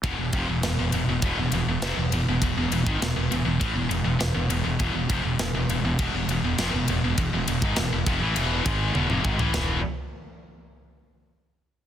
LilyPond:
<<
  \new Staff \with { instrumentName = "Distorted electric guitar" } { \clef bass \time 4/4 \tempo 4 = 101 <e, b,>16 <e, b,>16 <f, c>16 <e, b,>16 <e, b,>16 <e, b,>16 <e, b,>16 <e, b,>16 <e, b,>16 <e, b,>16 <e, b,>16 <e, b,>16 <f, c>16 <e, b,>16 <e, b,>16 <e, b,>16 | <e, b,>16 <e, b,>16 <e, b,>16 <gis, dis>16 <e, b,>16 <e, b,>16 <e, b,>16 <e, b,>16 <a, e>16 <e, b,>16 <e, b,>16 <e, b,>16 <e, b,>16 <e, b,>16 <e, b,>16 <e, b,>16 | <e, b,>16 <e, b,>16 <f, c>16 <e, b,>16 <e, b,>16 <e, b,>16 <e, b,>16 <e, b,>16 <e, b,>16 <e, b,>16 <e, b,>16 <e, b,>16 <f, c>16 <e, b,>16 <e, b,>16 <e, b,>16 | <e, b,>16 <e, b,>16 <e, b,>16 <gis, dis>16 <e, b,>16 <e, b,>16 <f, c>16 <a, e>16 <e, b, e>8 <gis, dis gis>8 <e, b,>16 <f, c>16 <gis, dis>16 <a, e>16 |
<e, b, e>8 r2. r8 | }
  \new Staff \with { instrumentName = "Fingered electric bass" } { \clef bass \time 4/4 e,,16 e,,16 f,,16 e,,16 e,,16 e,,16 e,,16 e,,16 e,,16 e,,16 e,,16 e,,16 f,,16 e,,16 e,,16 e,,16 | e,,16 e,,16 e,,16 gis,,16 e,,16 e,,16 e,,16 e,,16 a,,16 e,,16 e,,16 e,,16 e,,16 e,,16 e,,16 e,,16 | e,,16 e,,16 f,,16 e,,16 e,,16 e,,16 e,,16 e,,16 e,,16 e,,16 e,,16 e,,16 f,,16 e,,16 e,,16 e,,16 | e,,16 e,,16 e,,16 gis,,16 e,,16 e,,16 f,,16 a,,16 e,,8 gis,,8 e,,16 f,,16 gis,,16 a,,16 |
e,,8 r2. r8 | }
  \new DrumStaff \with { instrumentName = "Drums" } \drummode { \time 4/4 <bd cymr>8 <bd cymr>8 <cymr sn>8 cymr8 <bd cymr>8 cymr8 <cymr sn>8 cymr8 | <bd cymr>8 cymr16 bd16 <cymr sn>8 cymr8 <bd cymr>8 cymr8 <cymr sn>8 cymr8 | <bd cymr>8 <bd cymr>8 <cymr sn>8 cymr8 <bd cymr>8 cymr8 <cymr sn>8 cymr8 | <bd cymr>8 cymr16 bd16 <cymr sn>8 <bd cymr>8 cymr8 <bd cymr>8 tommh16 toml16 bd16 tomfh16 |
<rb sn tomfh>4 r4 r4 r4 | }
>>